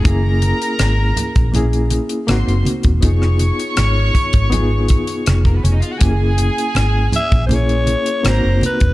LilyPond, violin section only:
\new Staff \with { instrumentName = "Violin section" } { \time 4/4 \key fis \mixolydian \tempo 4 = 80 <ais' ais''>2~ <ais' ais''>8 r8 <bis' bis''>8 r8 | <cis'' cis'''>2.~ <cis'' cis'''>32 r32 <ais ais'>32 <b b'>32 <cis' cis''>32 <dis' dis''>32 <eis' eis''>32 <fis' fis''>32 | <gis' gis''>2~ <gis' gis''>8 r8 <ais' ais''>8 r8 | }